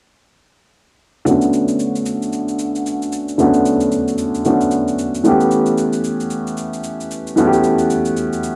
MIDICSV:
0, 0, Header, 1, 3, 480
1, 0, Start_track
1, 0, Key_signature, 2, "minor"
1, 0, Tempo, 530973
1, 1146, Time_signature, 4, 2, 24, 8
1, 7735, End_track
2, 0, Start_track
2, 0, Title_t, "Grand piano"
2, 0, Program_c, 0, 0
2, 1131, Note_on_c, 0, 50, 72
2, 1142, Note_on_c, 0, 57, 67
2, 1152, Note_on_c, 0, 59, 64
2, 1162, Note_on_c, 0, 61, 65
2, 1172, Note_on_c, 0, 66, 79
2, 1291, Control_c, 0, 64, 127
2, 3022, Note_off_c, 0, 50, 0
2, 3028, Note_off_c, 0, 57, 0
2, 3033, Note_off_c, 0, 59, 0
2, 3038, Note_off_c, 0, 61, 0
2, 3043, Note_off_c, 0, 66, 0
2, 3054, Note_on_c, 0, 50, 70
2, 3064, Note_on_c, 0, 57, 67
2, 3074, Note_on_c, 0, 59, 65
2, 3085, Note_on_c, 0, 61, 67
2, 3094, Note_on_c, 0, 66, 78
2, 4001, Note_off_c, 0, 50, 0
2, 4006, Note_off_c, 0, 57, 0
2, 4011, Note_off_c, 0, 59, 0
2, 4016, Note_off_c, 0, 61, 0
2, 4021, Note_off_c, 0, 66, 0
2, 4025, Note_on_c, 0, 50, 54
2, 4030, Note_on_c, 0, 57, 48
2, 4034, Note_on_c, 0, 59, 47
2, 4040, Note_on_c, 0, 61, 48
2, 4045, Note_on_c, 0, 66, 60
2, 4731, Note_off_c, 0, 57, 0
2, 4733, Note_on_c, 0, 52, 67
2, 4740, Note_off_c, 0, 59, 0
2, 4744, Note_on_c, 0, 57, 64
2, 4745, Note_off_c, 0, 50, 0
2, 4751, Note_off_c, 0, 61, 0
2, 4754, Note_on_c, 0, 59, 62
2, 4755, Note_off_c, 0, 66, 0
2, 4758, Control_c, 0, 64, 0
2, 4764, Note_on_c, 0, 61, 63
2, 4775, Note_on_c, 0, 67, 76
2, 4911, Control_c, 0, 64, 127
2, 6623, Note_off_c, 0, 52, 0
2, 6629, Note_off_c, 0, 57, 0
2, 6634, Note_off_c, 0, 59, 0
2, 6639, Note_off_c, 0, 61, 0
2, 6644, Note_off_c, 0, 67, 0
2, 6651, Note_on_c, 0, 52, 66
2, 6662, Note_on_c, 0, 57, 60
2, 6672, Note_on_c, 0, 59, 64
2, 6682, Note_on_c, 0, 61, 63
2, 6693, Note_on_c, 0, 66, 61
2, 6746, Note_off_c, 0, 66, 0
2, 6751, Note_on_c, 0, 67, 76
2, 7735, Note_off_c, 0, 52, 0
2, 7735, Note_off_c, 0, 57, 0
2, 7735, Note_off_c, 0, 59, 0
2, 7735, Note_off_c, 0, 61, 0
2, 7735, Note_off_c, 0, 67, 0
2, 7735, End_track
3, 0, Start_track
3, 0, Title_t, "Drums"
3, 1146, Note_on_c, 9, 82, 68
3, 1236, Note_off_c, 9, 82, 0
3, 1279, Note_on_c, 9, 82, 53
3, 1369, Note_off_c, 9, 82, 0
3, 1385, Note_on_c, 9, 82, 79
3, 1476, Note_off_c, 9, 82, 0
3, 1520, Note_on_c, 9, 82, 62
3, 1611, Note_off_c, 9, 82, 0
3, 1623, Note_on_c, 9, 82, 61
3, 1713, Note_off_c, 9, 82, 0
3, 1768, Note_on_c, 9, 82, 54
3, 1858, Note_off_c, 9, 82, 0
3, 1860, Note_on_c, 9, 82, 88
3, 1950, Note_off_c, 9, 82, 0
3, 2009, Note_on_c, 9, 82, 52
3, 2100, Note_off_c, 9, 82, 0
3, 2103, Note_on_c, 9, 82, 63
3, 2193, Note_off_c, 9, 82, 0
3, 2245, Note_on_c, 9, 82, 45
3, 2336, Note_off_c, 9, 82, 0
3, 2340, Note_on_c, 9, 82, 83
3, 2431, Note_off_c, 9, 82, 0
3, 2490, Note_on_c, 9, 82, 45
3, 2580, Note_off_c, 9, 82, 0
3, 2588, Note_on_c, 9, 82, 75
3, 2679, Note_off_c, 9, 82, 0
3, 2732, Note_on_c, 9, 82, 54
3, 2823, Note_off_c, 9, 82, 0
3, 2824, Note_on_c, 9, 82, 89
3, 2914, Note_off_c, 9, 82, 0
3, 2968, Note_on_c, 9, 82, 51
3, 3059, Note_off_c, 9, 82, 0
3, 3064, Note_on_c, 9, 82, 68
3, 3155, Note_off_c, 9, 82, 0
3, 3198, Note_on_c, 9, 82, 52
3, 3288, Note_off_c, 9, 82, 0
3, 3305, Note_on_c, 9, 82, 82
3, 3395, Note_off_c, 9, 82, 0
3, 3440, Note_on_c, 9, 82, 62
3, 3530, Note_off_c, 9, 82, 0
3, 3542, Note_on_c, 9, 82, 64
3, 3633, Note_off_c, 9, 82, 0
3, 3688, Note_on_c, 9, 82, 56
3, 3779, Note_off_c, 9, 82, 0
3, 3782, Note_on_c, 9, 82, 88
3, 3872, Note_off_c, 9, 82, 0
3, 3931, Note_on_c, 9, 82, 53
3, 4021, Note_off_c, 9, 82, 0
3, 4024, Note_on_c, 9, 82, 63
3, 4114, Note_off_c, 9, 82, 0
3, 4168, Note_on_c, 9, 82, 47
3, 4259, Note_off_c, 9, 82, 0
3, 4261, Note_on_c, 9, 82, 82
3, 4351, Note_off_c, 9, 82, 0
3, 4412, Note_on_c, 9, 82, 44
3, 4502, Note_off_c, 9, 82, 0
3, 4509, Note_on_c, 9, 82, 75
3, 4599, Note_off_c, 9, 82, 0
3, 4654, Note_on_c, 9, 82, 56
3, 4744, Note_off_c, 9, 82, 0
3, 4745, Note_on_c, 9, 82, 86
3, 4836, Note_off_c, 9, 82, 0
3, 4887, Note_on_c, 9, 82, 50
3, 4978, Note_off_c, 9, 82, 0
3, 4983, Note_on_c, 9, 82, 69
3, 5074, Note_off_c, 9, 82, 0
3, 5118, Note_on_c, 9, 82, 54
3, 5208, Note_off_c, 9, 82, 0
3, 5223, Note_on_c, 9, 82, 82
3, 5314, Note_off_c, 9, 82, 0
3, 5360, Note_on_c, 9, 82, 59
3, 5450, Note_off_c, 9, 82, 0
3, 5463, Note_on_c, 9, 82, 64
3, 5553, Note_off_c, 9, 82, 0
3, 5608, Note_on_c, 9, 82, 53
3, 5698, Note_off_c, 9, 82, 0
3, 5700, Note_on_c, 9, 82, 87
3, 5790, Note_off_c, 9, 82, 0
3, 5850, Note_on_c, 9, 82, 53
3, 5941, Note_off_c, 9, 82, 0
3, 5942, Note_on_c, 9, 82, 62
3, 6032, Note_off_c, 9, 82, 0
3, 6087, Note_on_c, 9, 82, 46
3, 6177, Note_off_c, 9, 82, 0
3, 6180, Note_on_c, 9, 82, 85
3, 6270, Note_off_c, 9, 82, 0
3, 6331, Note_on_c, 9, 82, 44
3, 6422, Note_off_c, 9, 82, 0
3, 6429, Note_on_c, 9, 82, 80
3, 6519, Note_off_c, 9, 82, 0
3, 6573, Note_on_c, 9, 82, 56
3, 6663, Note_off_c, 9, 82, 0
3, 6665, Note_on_c, 9, 82, 86
3, 6755, Note_off_c, 9, 82, 0
3, 6807, Note_on_c, 9, 82, 51
3, 6897, Note_off_c, 9, 82, 0
3, 6903, Note_on_c, 9, 82, 70
3, 6994, Note_off_c, 9, 82, 0
3, 7038, Note_on_c, 9, 82, 54
3, 7128, Note_off_c, 9, 82, 0
3, 7143, Note_on_c, 9, 82, 78
3, 7234, Note_off_c, 9, 82, 0
3, 7279, Note_on_c, 9, 82, 61
3, 7369, Note_off_c, 9, 82, 0
3, 7382, Note_on_c, 9, 82, 66
3, 7473, Note_off_c, 9, 82, 0
3, 7528, Note_on_c, 9, 82, 52
3, 7619, Note_off_c, 9, 82, 0
3, 7623, Note_on_c, 9, 82, 92
3, 7713, Note_off_c, 9, 82, 0
3, 7735, End_track
0, 0, End_of_file